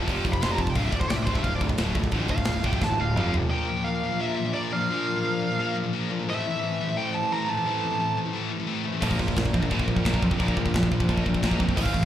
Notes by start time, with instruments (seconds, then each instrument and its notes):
0.08 picked electric bass F1, distorted electric guitar F2 C3 F3, string section F3 C4 F4, kick, crash
0.25 picked electric bass F1, distorted electric guitar F2 C3, kick, crash
0.33 lead electric guitar B5, kick
0.41 picked electric bass F1, distorted electric guitar F2 C3 F3, lead electric guitar C6, snare, crash
0.52 lead electric guitar A#5
0.58 distorted electric guitar F2 C3, lead electric guitar A5, kick, crash
0.67 lead electric guitar G5, kick
0.74 picked electric bass D1, distorted electric guitar D2 A2 D3, string section D3 A3 F4 A4, lead electric guitar F5, kick, crash
0.85 lead electric guitar E5
0.91 picked electric bass D1, distorted electric guitar D2 A2, lead electric guitar D5, kick, crash
1.00 lead electric guitar C5, kick
1.09 picked electric bass C2, distorted electric guitar D2 A2, lead electric guitar D5, snare, crash
1.16 lead electric guitar E5
1.22 distorted electric guitar D2, lead electric guitar C5 D5
1.26 picked electric bass D1, distorted electric guitar A2 D3, kick, crash
1.35 lead electric guitar E5, kick
1.44 picked electric bass D1, distorted electric guitar D2 A2, lead electric guitar F5, kick, crash
1.48 overdriven electric guitar D3
1.55 lead electric guitar D5
1.61 picked electric bass D1, distorted electric guitar D2 A2, kick, crash
1.69 kick
1.78 picked electric bass D1, distorted electric guitar D2 A2 D3, snare, crash
1.95 picked electric bass D1, distorted electric guitar D2 A2, kick, crash
2.04 kick
2.11 picked electric bass A1, distorted electric guitar D2 A2 D3, kick, crash
2.28 picked electric bass D1, distorted electric guitar D2 A2, lead electric guitar F5, kick, crash
2.38 kick
2.45 picked electric bass D1, distorted electric guitar D2 A2, snare, crash
2.63 picked electric bass D1, distorted electric guitar D2 A2 D3, lead electric guitar G5, kick, crash
2.73 kick
2.82 picked electric bass A1, distorted electric guitar D2 A2, overdriven electric guitar D3, lead electric guitar A5, kick, snare
2.99 picked electric bass D1, distorted electric guitar D2 A2, lead electric guitar F5
3.15 picked electric bass F1, distorted electric guitar F2 C3 F3, string section C4, mid tom
3.34 distorted electric guitar F2 C3, floor tom
3.49 distorted electric guitar A#2 F3 A#3, string section F3 A#3 D4 A#4 D5, lead electric guitar G5
3.69 distorted electric guitar A#2 F3
3.76 distorted electric guitar A#2 F3
3.84 distorted electric guitar A#2 F3, lead electric guitar F5
4.03 distorted electric guitar A#2 F3
4.12 distorted electric guitar A#2 F3
4.20 distorted electric guitar A#2 F3 A#3, lead electric guitar E5
4.38 distorted electric guitar A#2 F3
4.45 distorted electric guitar A#2 F3
4.53 distorted electric guitar A#2 F3 A#3, lead electric guitar D5
4.72 distorted electric guitar A#2 F3, overdriven electric guitar A#3, lead electric guitar F5
4.76 overdriven electric guitar A#2
4.81 distorted electric guitar A#2 F3
4.90 distorted electric guitar A#2 F3 A#3
5.07 distorted electric guitar A#2 F3
5.16 distorted electric guitar A#2 F3
5.25 distorted electric guitar A#2 F3
5.42 distorted electric guitar A#2 F3
5.51 distorted electric guitar A#2 F3
5.59 distorted electric guitar A#2 F3 A#3
5.75 distorted electric guitar A#2 F3
5.84 distorted electric guitar A#2 F3
5.93 distorted electric guitar A#2 F3 A#3
6.10 distorted electric guitar A#2 F3, overdriven electric guitar A#3
6.19 distorted electric guitar A#2 F3
6.28 distorted electric guitar A2 E3 A3, string section E3 A3 C4 A4 C5, lead electric guitar E5
6.46 distorted electric guitar A2 E3
6.56 distorted electric guitar A2 E3
6.63 distorted electric guitar A2 E3
6.81 distorted electric guitar A2 E3
6.89 distorted electric guitar A2 E3
6.97 distorted electric guitar A2 E3 A3, lead electric guitar G5
7.14 distorted electric guitar A2 E3, lead electric guitar A5
7.23 distorted electric guitar A2 E3
7.32 distorted electric guitar A2 E3 A3, lead electric guitar A#5
7.48 distorted electric guitar A2 E3, overdriven electric guitar A3, lead electric guitar A5
7.57 distorted electric guitar A2 E3
7.66 distorted electric guitar A2 E3 A3
7.84 distorted electric guitar A2 E3
7.91 distorted electric guitar A2 E3
8.00 distorted electric guitar A2 E3
8.17 distorted electric guitar A2 E3
8.25 distorted electric guitar A2 E3
8.33 distorted electric guitar A2 E3 A3
8.51 distorted electric guitar A2 E3
8.60 distorted electric guitar A2 E3
8.67 distorted electric guitar A2 E3 A3
8.84 distorted electric guitar A2 E3, overdriven electric guitar A3
8.88 overdriven electric guitar A2
8.92 distorted electric guitar A2 E3
9.00 picked electric bass A#1, distorted electric guitar A#2 F3 A#3, string section F3 A#3 D4 A#4 D5, kick, china, crash
9.11 kick
9.18 picked electric bass A#1, distorted electric guitar A#2 F3, kick
9.27 distorted electric guitar A#2 F3, kick
9.36 picked electric bass A#1, distorted electric guitar A#2 F3, kick, snare, china
9.45 kick
9.53 picked electric bass A#1, distorted electric guitar A#2 F3, kick
9.62 distorted electric guitar A#2 F3, kick
9.70 picked electric bass A#1, distorted electric guitar A#2 F3 A#3, kick, china
9.79 kick
9.87 picked electric bass A#1, distorted electric guitar A#2 F3, kick
9.96 distorted electric guitar A#2 F3, kick
10.04 picked electric bass A#1, distorted electric guitar A#2 F3 A#3, kick, snare, china
10.14 kick
10.22 picked electric bass F2, distorted electric guitar A#2 F3, overdriven electric guitar A#3, kick
10.30 distorted electric guitar A#2 F3, kick
10.38 picked electric bass A#1, distorted electric guitar A#2 F3 A#3, kick, china
10.43 overdriven electric guitar A#3
10.48 kick
10.55 picked electric bass A#1, distorted electric guitar A#2 F3, kick
10.65 distorted electric guitar A#2 F3, kick
10.74 picked electric bass A#1, distorted electric guitar A#2 F3, kick, snare, china
10.83 kick
10.92 picked electric bass A#1, distorted electric guitar A#2 F3, kick
11.00 distorted electric guitar A#2 F3, kick
11.08 picked electric bass A#1, distorted electric guitar A#2 F3 A#3, kick, china
11.18 kick
11.25 picked electric bass A#1, distorted electric guitar A#2 F3, kick
11.34 distorted electric guitar A#2 F3, kick
11.42 picked electric bass A#1, distorted electric guitar A#2 F3 A#3, kick, snare, china
11.51 kick
11.60 picked electric bass F2, distorted electric guitar A#2 F3, overdriven electric guitar A#3, kick
11.69 distorted electric guitar A#2 F3, kick
11.76 picked electric bass A1, distorted electric guitar A2 E3 A3, string section E3 A3 C4 A4 C5, lead electric guitar F5, kick, china, crash
11.86 kick
11.94 picked electric bass A1, distorted electric guitar A2 E3, kick
12.01 distorted electric guitar A2 E3